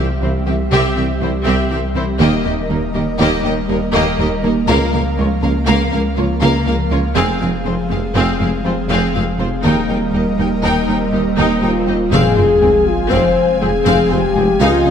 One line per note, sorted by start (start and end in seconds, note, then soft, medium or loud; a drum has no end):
0.00 2.22 C2 medium
0.00 0.12 E3 medium
0.00 4.69 G3 medium
0.00 2.20 C4 medium
0.00 2.21 G4 medium
0.00 2.21 E5 medium
0.22 0.30 C2 medium
0.22 0.32 C2 medium
0.22 0.31 C2 medium
0.22 0.37 E3 medium
0.22 0.30 C4 medium
0.22 0.30 E4 medium
0.22 0.30 C5 medium
0.47 0.55 C2 medium
0.47 0.57 C2 medium
0.47 0.55 C2 medium
0.47 0.62 E3 medium
0.47 0.55 C4 medium
0.47 0.55 G4 medium
0.47 0.55 E5 medium
0.71 0.80 C2 medium
0.71 0.82 C2 medium
0.71 0.80 C2 medium
0.71 0.87 C3 medium
0.71 0.95 C4 medium
0.71 0.95 G4 medium
0.71 0.95 E5 medium
0.97 1.07 C2 medium
0.97 1.05 C2 medium
0.97 1.12 E3 medium
0.97 1.05 C4 medium
0.97 1.05 G4 medium
0.97 1.05 E5 medium
1.21 1.29 C2 medium
1.21 1.31 C2 medium
1.21 1.30 C2 medium
1.21 1.37 E3 medium
1.21 1.39 G3 medium
1.21 1.29 C4 medium
1.21 1.30 E4 medium
1.21 1.39 E4 medium
1.21 1.30 C5 medium
1.46 1.54 C2 medium
1.46 1.56 C2 medium
1.46 1.54 C2 medium
1.46 1.61 C3 medium
1.46 1.69 C4 medium
1.46 1.69 G4 medium
1.46 1.69 E5 medium
1.70 1.78 C2 medium
1.70 1.79 C2 medium
1.70 1.81 C2 medium
1.70 1.86 E3 medium
1.70 1.79 C4 medium
1.70 1.79 G4 medium
1.70 1.78 E5 medium
1.95 2.04 C2 medium
1.95 2.06 C2 medium
1.95 2.10 E3 medium
1.95 2.03 C4 medium
1.95 2.04 E4 medium
1.95 2.04 C5 medium
2.20 4.70 D#1 medium
2.20 2.28 D#2 loud
2.20 2.28 D#2 medium
2.20 2.31 D#2 loud
2.20 2.35 D#3 loud
2.20 2.38 G3 medium
2.20 2.43 A#3 loud
2.20 7.17 A#3 medium
2.20 2.38 D#4 medium
2.20 2.43 G4 medium
2.20 7.16 A#4 medium
2.20 2.43 D#5 medium
2.20 4.69 D#5 medium
2.44 2.53 D#2 medium
2.44 2.56 D#2 medium
2.44 2.60 G3 medium
2.44 2.52 A#3 medium
2.44 2.52 G4 medium
2.44 2.53 D#5 medium
2.70 2.80 D#2 medium
2.70 2.78 D#2 medium
2.70 2.85 G3 medium
2.70 2.78 A#3 medium
2.70 2.78 D#4 medium
2.70 2.78 A#4 medium
2.94 3.03 D#2 medium
2.94 3.05 D#2 medium
2.94 3.03 D#2 medium
2.94 3.10 G3 medium
2.94 3.03 A#3 medium
2.94 3.03 G4 medium
2.94 3.03 D#5 medium
3.19 3.27 D#2 medium
3.19 3.30 D#2 loud
3.19 3.28 D#2 loud
3.19 3.34 D#3 medium
3.19 3.43 A#3 medium
3.19 3.43 G4 loud
3.19 3.43 D#5 medium
3.44 3.52 D#2 medium
3.44 3.55 D#2 medium
3.44 3.53 D#2 medium
3.44 3.60 G3 medium
3.44 3.52 A#3 medium
3.44 3.52 G4 medium
3.44 3.53 D#5 medium
3.68 3.77 D#2 medium
3.68 3.80 D#2 medium
3.68 3.86 G3 medium
3.68 3.84 G3 medium
3.68 3.77 A#3 medium
3.68 3.86 D#4 medium
3.68 3.77 D#4 medium
3.68 3.78 A#4 medium
3.94 4.02 D#2 medium
3.94 4.04 D#2 medium
3.94 4.09 D#3 loud
3.94 4.17 A#3 loud
3.94 4.17 G4 medium
3.94 4.18 D#5 loud
4.19 4.27 D#2 medium
4.19 4.29 D#2 medium
4.19 4.27 D#2 medium
4.19 4.34 G3 medium
4.19 4.27 A#3 medium
4.19 4.27 G4 medium
4.19 4.28 D#5 medium
4.43 4.51 D#2 medium
4.43 4.52 D#2 medium
4.43 4.54 D#2 medium
4.43 4.59 G3 medium
4.43 4.51 A#3 medium
4.43 4.52 D#4 medium
4.43 4.53 A#4 medium
4.68 4.76 C#2 loud
4.68 4.77 C#2 medium
4.68 7.18 C#2 medium
4.68 4.79 C#2 loud
4.68 9.65 F3 medium
4.68 4.83 A#3 loud
4.68 4.92 A#3 medium
4.68 4.86 A#3 medium
4.68 4.86 F4 medium
4.68 4.92 A#4 loud
4.68 4.92 F5 medium
4.68 9.65 F5 medium
4.93 5.01 C#2 medium
4.93 5.04 C#2 medium
4.93 5.01 A#3 medium
4.93 5.08 C#4 medium
4.93 5.01 A#4 medium
4.93 5.02 F5 medium
5.18 5.26 C#2 medium
5.18 5.28 C#2 medium
5.18 5.26 C#2 medium
5.18 5.26 A#3 medium
5.18 5.33 C#4 medium
5.18 5.26 F4 medium
5.18 5.27 C#5 medium
5.42 5.51 C#2 medium
5.42 5.53 C#2 medium
5.42 5.50 A#3 medium
5.42 5.58 C#4 medium
5.42 5.51 A#4 medium
5.42 5.51 F5 medium
5.67 5.75 C#2 loud
5.67 5.76 C#2 loud
5.67 5.78 C#2 loud
5.67 5.91 A#3 medium
5.67 5.82 A#3 loud
5.67 5.91 A#4 medium
5.67 5.91 F5 loud
5.92 6.01 C#2 medium
5.92 6.03 C#2 medium
5.92 6.00 A#3 medium
5.92 6.07 C#4 medium
5.92 6.00 A#4 medium
5.92 6.00 F5 medium
6.17 6.25 C#2 medium
6.17 6.28 C#2 medium
6.17 6.25 A#3 medium
6.17 6.35 A#3 medium
6.17 6.32 C#4 medium
6.17 6.25 F4 medium
6.17 6.35 F4 medium
6.17 6.25 C#5 medium
6.41 6.49 C#2 medium
6.41 6.52 C#2 loud
6.41 6.50 C#2 medium
6.41 6.65 A#3 medium
6.41 6.57 A#3 medium
6.41 6.65 A#4 medium
6.41 6.65 F5 loud
6.66 6.74 C#2 medium
6.66 6.75 C#2 medium
6.66 6.77 C#2 medium
6.66 6.75 A#3 medium
6.66 6.82 C#4 medium
6.66 6.75 A#4 medium
6.66 6.75 F5 medium
6.91 6.99 C#2 medium
6.91 7.01 C#2 medium
6.91 6.99 C#2 medium
6.91 6.99 A#3 medium
6.91 7.07 C#4 medium
6.91 6.99 F4 medium
6.91 6.99 C#5 medium
7.15 7.24 F1 loud
7.15 9.66 F1 medium
7.15 7.26 F1 loud
7.15 7.24 F2 medium
7.15 7.31 F3 loud
7.15 7.39 C4 medium
7.15 7.33 C4 medium
7.15 9.65 C4 medium
7.15 7.33 G#4 medium
7.15 7.39 G#4 loud
7.15 9.65 G#4 medium
7.15 7.39 F5 medium
7.41 7.51 F1 medium
7.41 7.49 F1 medium
7.41 7.49 F2 medium
7.41 7.56 G#3 medium
7.41 7.49 C4 medium
7.41 7.49 G#4 medium
7.41 7.49 F5 medium
7.65 7.76 F1 medium
7.65 7.74 F1 medium
7.65 7.74 F2 medium
7.65 7.81 G#3 medium
7.65 7.73 C4 medium
7.65 7.74 F4 medium
7.65 7.74 C5 medium
7.90 8.01 F1 medium
7.90 7.99 F1 medium
7.90 7.98 F2 medium
7.90 8.06 G#3 medium
7.90 7.98 C4 medium
7.90 7.99 G#4 medium
7.90 7.99 F5 medium
8.15 8.25 F1 medium
8.15 8.23 F1 medium
8.15 8.23 F2 medium
8.15 8.30 F3 loud
8.15 8.38 C4 medium
8.15 8.39 G#4 medium
8.15 8.39 F5 medium
8.39 8.47 F1 medium
8.39 8.50 F1 medium
8.39 8.47 F2 medium
8.39 8.55 G#3 medium
8.39 8.48 C4 medium
8.39 8.49 G#4 medium
8.39 8.48 F5 medium
8.64 8.72 F1 medium
8.64 8.75 F1 medium
8.64 8.73 F2 medium
8.64 8.80 G#3 medium
8.64 8.73 C4 medium
8.64 8.82 C4 medium
8.64 8.74 F4 medium
8.64 8.83 G#4 medium
8.64 8.73 C5 medium
8.89 8.97 F1 medium
8.89 9.00 F1 medium
8.89 8.97 F2 medium
8.89 9.05 F3 loud
8.89 9.13 C4 medium
8.89 9.13 G#4 medium
8.89 9.13 F5 medium
9.14 9.24 F1 medium
9.14 9.23 F1 medium
9.14 9.22 F2 medium
9.14 9.30 G#3 medium
9.14 9.23 C4 medium
9.14 9.23 G#4 medium
9.14 9.23 F5 medium
9.39 9.49 F1 medium
9.39 9.47 F1 medium
9.39 9.47 F2 medium
9.39 9.55 G#3 medium
9.39 9.47 C4 medium
9.39 9.47 F4 medium
9.39 9.48 C5 medium
9.63 12.12 D#1 medium
9.63 9.72 D#2 medium
9.63 9.74 D#2 medium
9.63 9.79 D#3 medium
9.63 12.13 G3 medium
9.63 9.81 A#3 medium
9.63 12.12 A#3 medium
9.63 9.87 D#4 medium
9.63 9.81 G4 medium
9.63 9.87 A#4 medium
9.63 12.13 A#4 medium
9.63 12.13 D#5 medium
9.63 9.87 G5 medium
9.63 swell medium
9.89 9.97 D#2 medium
9.89 9.99 D#2 medium
9.89 10.04 G3 medium
9.89 9.97 D#4 soft
9.89 9.97 A#4 soft
9.89 9.97 G5 medium
10.13 10.21 D#2 soft
10.13 10.22 D#2 medium
10.13 10.24 D#2 medium
10.13 10.29 G3 medium
10.13 10.22 D#4 medium
10.13 10.22 G4 medium
10.13 10.23 D#5 medium
10.38 10.47 D#2 medium
10.38 10.49 D#2 medium
10.38 10.54 G3 medium
10.38 10.46 D#4 soft
10.38 10.47 A#4 medium
10.38 10.47 G5 medium
10.63 10.71 D#2 medium
10.63 10.73 D#2 medium
10.63 10.78 D#3 loud
10.63 10.86 D#4 medium
10.63 10.86 A#4 medium
10.63 10.87 G5 medium
10.88 10.96 D#2 medium
10.88 10.99 D#2 medium
10.88 11.03 G3 medium
10.88 10.96 D#4 medium
10.88 10.97 A#4 medium
10.88 10.97 G5 medium
11.12 11.20 D#2 medium
11.12 11.21 D#2 medium
11.12 11.23 D#2 medium
11.12 11.28 G3 medium
11.12 11.30 A#3 medium
11.12 11.21 D#4 medium
11.12 11.30 G4 medium
11.12 11.21 G4 medium
11.12 11.22 D#5 medium
11.37 11.45 D#2 medium
11.37 11.48 D#2 medium
11.37 11.46 D#2 medium
11.37 11.52 D#3 loud
11.37 11.61 D#4 medium
11.37 11.61 A#4 medium
11.37 11.61 G5 medium
11.62 11.70 D#2 medium
11.62 11.71 D#2 medium
11.62 11.73 D#2 medium
11.62 11.77 G3 medium
11.62 11.70 D#4 medium
11.62 12.09 F4 medium
11.62 11.70 A#4 medium
11.62 11.71 G5 medium
11.87 11.95 D#2 soft
11.87 11.98 D#2 soft
11.87 11.96 D#2 medium
11.87 12.02 G3 medium
11.87 11.95 D#4 medium
11.87 11.95 G4 medium
11.87 11.96 D#5 medium
12.12 14.62 F1 medium
12.12 12.23 F1 loud
12.12 12.21 F1 medium
12.12 12.20 F2 medium
12.12 12.27 F3 loud
12.12 14.90 F3 medium
12.12 14.90 G#3 medium
12.12 12.35 C4 medium
12.12 14.57 C4 medium
12.12 12.87 G#4 loud
12.12 12.35 F5 loud
12.12 14.57 F5 medium
12.12 14.90 G#5 medium
12.12 sub drop medium
12.37 12.47 F1 medium
12.37 12.45 F2 medium
12.37 12.45 C4 medium
12.37 12.52 F4 medium
12.37 12.45 C5 medium
12.61 12.72 F1 medium
12.61 12.71 F1 medium
12.61 12.69 F2 medium
12.61 12.77 G#3 medium
12.61 12.69 C4 medium
12.61 12.69 G#4 medium
12.87 13.12 F4 loud
13.11 13.21 F1 medium
13.11 13.20 F1 medium
13.11 13.19 F2 medium
13.11 13.26 F3 loud
13.11 13.35 C4 medium
13.11 13.61 C5 medium
13.11 13.34 F5 medium
13.60 13.71 F1 medium
13.60 13.70 F1 medium
13.60 13.69 F2 medium
13.60 13.76 G#3 medium
13.60 13.70 C4 medium
13.60 14.09 G#4 medium
13.60 13.69 G#4 medium
13.85 13.96 F1 medium
13.85 13.94 F1 medium
13.85 13.93 F2 medium
13.85 14.01 F3 loud
13.85 14.09 C4 medium
13.85 14.09 F5 loud
14.10 14.19 F1 medium
14.10 14.21 F1 medium
14.10 14.19 F2 medium
14.10 14.19 C4 medium
14.10 14.26 C4 medium
14.10 14.60 G4 loud
14.10 14.18 C5 medium
14.36 14.44 F1 medium
14.36 14.46 F1 medium
14.36 14.44 F2 medium
14.36 14.50 G#3 medium
14.36 14.44 C4 medium
14.36 14.44 G#4 medium
14.60 14.68 C#2 medium
14.60 14.90 C#2 medium
14.60 14.69 C#2 medium
14.60 14.70 C#2 medium
14.60 14.75 C#3 loud
14.60 14.90 C#4 medium
14.60 14.84 D#4 medium
14.60 14.90 F4 loud
14.60 14.90 D#5 medium
14.60 14.83 F5 loud
14.85 14.90 C#2 medium
14.85 14.90 C#4 medium
14.85 14.90 D#4 medium
14.85 14.90 D#5 medium